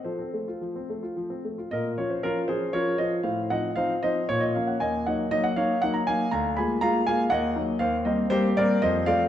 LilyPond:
<<
  \new Staff \with { instrumentName = "Grand piano" } { \time 3/4 \key bes \minor \tempo 4 = 117 <a' c''>2~ <a' c''>8 r8 | <bes' ees''>8 des''16 c''16 <f' bes'>8 <aes' c''>8 <bes' des''>8 <c'' ees''>8 | <c'' f''>8 <ees'' ges''>8 <c'' f''>8 <c'' ees''>8 des''16 ees''16 f''16 ges''16 | <ees'' aes''>8 <ees'' ges''>8 ees''16 ges''16 <des'' f''>8 ges''16 bes''16 <f'' aes''>8 |
<f'' bes''>8 <aes'' ces'''>8 <f'' bes''>8 <f'' aes''>8 <ees'' ges''>4 | \key c \dorian <c'' f''>8 <c'' ees''>8 <g' c''>8 <bes' d''>8 <c'' ees''>8 <d'' f''>8 | }
  \new Staff \with { instrumentName = "Grand piano" } { \time 3/4 \key bes \minor f16 c'16 a16 f'16 f16 c'16 a16 f'16 f16 c'16 a16 f'16 | bes,8 <f des' f'>8 <f des'>8 <f des' f'>8 <f des' f'>8 <f des' f'>8 | a,8 <f c' ees'>8 <f c' ees'>8 <f c' ees'>8 bes,8 <f bes des'>8 | ees,8 <ges bes ees'>8 <ges bes ees'>8 <ges bes ees'>8 <ges bes ees'>8 <ges bes ees'>8 |
d,8 <aes bes f'>8 <aes bes f'>8 <aes bes f'>8 ees,8 <ges bes ees'>8 | \key c \dorian ees,8 <g bes c'>8 <g bes c'>8 <g bes c'>8 f,8 <f a c'>8 | }
>>